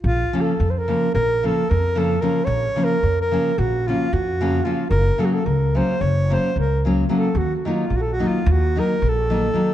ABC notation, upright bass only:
X:1
M:9/8
L:1/8
Q:3/8=74
K:Bbm
V:1 name="Upright bass" clef=bass
B,,, z F,,2 B,,,2 F,,3 | B,,, z F,,2 B,,,2 F,,3 | G,,, z D,,2 G,,,2 D,,3 | E,, z B,,,2 E,,2 B,,,3 |]